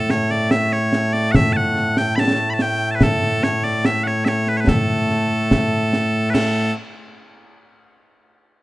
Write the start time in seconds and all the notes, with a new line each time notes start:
Already playing: A2 A3 A4
0.10 C#5, snare
0.30 D5, snare
0.51 E5, snare
0.72 C#5, snare
0.93 snare
1.13 D5, snare
1.31 F#5, concert bass drum, snare
1.36 E5
1.53 F#5 A5
1.76 snare
1.97 G5, snare
2.16 A5 B5, snare
2.50 A5 B5
2.59 G5, snare
2.91 A5
2.95 B4
3.01 A4, concert bass drum, snare
3.22 snare
3.43 C#5, snare
3.64 D5, snare
3.85 E5, snare
4.04 C#5 F#5, snare
4.25 C#5 E5, snare
4.47 B4, snare
4.57 B4 C#5
4.67 A4, concert bass drum, snare
5.09 snare
5.51 concert bass drum, snare
5.93 snare
6.30 A4 B4
6.35 snare, crash